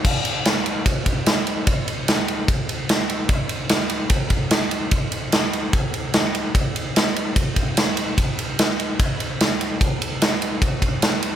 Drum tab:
CC |x-------|--------|--------|--------|
RD |-xxxxxxx|xxxxxxxx|xxxxxxxx|xxxxxxxx|
SD |--o---o-|--o---o-|--o---o-|--o---o-|
BD |o---oo--|o---o---|o---oo--|o---o---|

CC |--------|--------|--------|
RD |xxxxxxxx|xxxxxxxx|xxxxxxxx|
SD |--o---o-|--o---o-|--o---o-|
BD |o---oo--|o---o---|o---oo--|